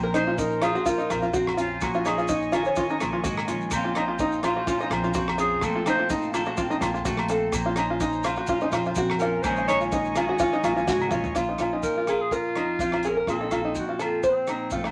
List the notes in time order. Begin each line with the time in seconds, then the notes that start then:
Already playing: A#1 A#2 C4 C5 A#5 C6
0.03 A#4
0.14 C#4 D#4 C5, cross-stick, closed hi-hat, low agogo, maracas
0.27 F4
0.38 D#4 A#4, kick, maracas
0.51 maracas
0.61 F3 F4 G#4, cross-stick, closed hi-hat, low agogo, maracas
0.75 F#4, maracas
0.86 F4 A#4, muted clean electric guitar stroke, kick, maracas
0.98 D#4, maracas
1.10 A#1 F2 F4, cross-stick, closed hi-hat, low agogo, maracas
1.22 F4, maracas
1.33 A#1 C4 F#4, kick, maracas
1.47 cross-stick, low agogo
1.57 C#4 F4, closed hi-hat, maracas
1.81 A#1 A#2 F#4 D#5 G#5 C#6, kick, cross-stick, low agogo, maracas
1.94 F4, maracas
2.05 C#4 D#4 G#4, cross-stick, closed hi-hat, low agogo, maracas
2.18 F4, maracas
2.28 D#4, kick, maracas
2.42 maracas
2.52 D#3 F4 G#4, cross-stick, closed hi-hat, low agogo, maracas
2.65 C#5, maracas
2.76 C#4 F4, kick, maracas
2.89 D#4, maracas
3.00 A#1 A#2 F4, cross-stick, closed hi-hat, low agogo, maracas
3.13 F4
3.24 G#1 G#3 F#4, kick, maracas
3.38 cross-stick, low agogo, maracas
3.48 A#1 C#4 F4, closed hi-hat, maracas
3.61 maracas
3.71 A#1 A#2 F3 C4 C5 A#5 C6, kick, cross-stick, low agogo, maracas
3.75 C#4 F4
3.85 F4
3.95 C#4 D#4, cross-stick, closed hi-hat, low agogo
4.08 F4
4.19 D#4, kick, maracas
4.32 maracas
4.43 F3 F4, cross-stick, closed hi-hat, low agogo, maracas
4.57 F#4
4.67 C#4 F4, kick, maracas
4.80 D#4, maracas
4.90 A#1 F2 F4, cross-stick, closed hi-hat, low agogo
5.04 F4, maracas
5.14 A#1 C4 F#4, kick, maracas
5.28 cross-stick, low agogo
5.38 C#4 F4 G#4, closed hi-hat, maracas
5.61 A#1 A#2 F3 A3 C4 A4 F5 A5, kick, cross-stick, low agogo, maracas
5.76 F4
5.86 C4 D#4 C5, cross-stick, closed hi-hat, low agogo, maracas
5.99 F4
6.10 D#4, kick, maracas
6.22 maracas
6.34 F3 F4 A4, cross-stick, closed hi-hat, low agogo, maracas
6.46 F#4, maracas
6.57 C4 F4, kick, maracas
6.70 D#4, maracas
6.81 A#1 A#2 F4, cross-stick, closed hi-hat, low agogo, maracas
6.94 F4, maracas
7.05 A#1 A3 F#4, kick, maracas
7.17 cross-stick, low agogo
7.28 C4 A4, closed hi-hat, maracas
7.52 A#1 A#2 C5 A#5, kick, cross-stick, low agogo, maracas
7.66 F4
7.76 C#4 D#4, cross-stick, closed hi-hat, low agogo, maracas
7.90 F4
8.00 D#4, kick, maracas
8.12 maracas
8.23 F3 F4, cross-stick, closed hi-hat, low agogo, maracas
8.36 F#4, maracas
8.47 F4, kick, maracas
8.51 C#4
8.61 D#4, maracas
8.71 A#1 F2 F4, cross-stick, closed hi-hat, low agogo, maracas
8.85 F4, maracas
8.95 A#1 C4 F#4, kick, maracas
9.10 cross-stick, low agogo
9.19 C#4 F4 A#4, closed hi-hat, maracas
9.42 A#1 A#2 D#3 G#3 C#4 C5 D#5 G#5 C#6, kick, cross-stick, low agogo, maracas
9.46 G#4
9.56 muted five-string banjo stroke, maracas
9.68 C#4 D#4 C#5, cross-stick, closed hi-hat, low agogo, maracas
9.81 F4, maracas
9.92 D#4, kick, maracas
10.05 maracas
10.15 D#3 F4 G#4, cross-stick, closed hi-hat, low agogo, maracas
10.29 F#4
10.39 C#4 F4, kick, maracas
10.53 D#4, maracas
10.63 A#1 A#2 F4, cross-stick, closed hi-hat, low agogo, maracas
10.76 F4, maracas
10.87 G#1 G#3 F#4, kick, snare, maracas
11.01 high tom, low agogo, maracas
11.11 A#1 C#4 F4, mid tom, maracas
11.24 floor tom, maracas
11.35 A#1 A#2 F4, kick, cross-stick, low agogo, maracas
11.49 D#4
11.58 A#1 C#4 F4, cross-stick, closed hi-hat, low agogo, maracas
11.73 D#4
11.83 F3 A#4, kick, maracas
11.97 F4
12.07 F4 G#4, cross-stick, closed hi-hat, low agogo, maracas
12.22 G#4
12.31 F4 A#4, kick, maracas
12.55 F2 D#4, cross-stick, closed hi-hat, low agogo
12.79 A#1 C4 F4, kick, maracas
12.92 F4, cross-stick, low agogo
13.03 C#4 G#4, closed hi-hat, maracas
13.07 A#4
13.17 A#4
13.27 A#1 A#2 C4 F4 A4, kick, cross-stick, low agogo, maracas
13.41 D#4
13.51 A#1 C4 F4, cross-stick, closed hi-hat, low agogo, maracas
13.65 D#4
13.75 F3, kick, maracas
13.79 F#4
13.89 F4
13.99 C4 F4 A4, cross-stick, closed hi-hat, low agogo, maracas
14.23 C5, kick, maracas
14.28 C4
14.47 A#2 D#4, cross-stick, closed hi-hat, low agogo, maracas
14.70 A#1 A3 F4, kick, maracas
14.84 muted five-string banjo stroke, cross-stick, low agogo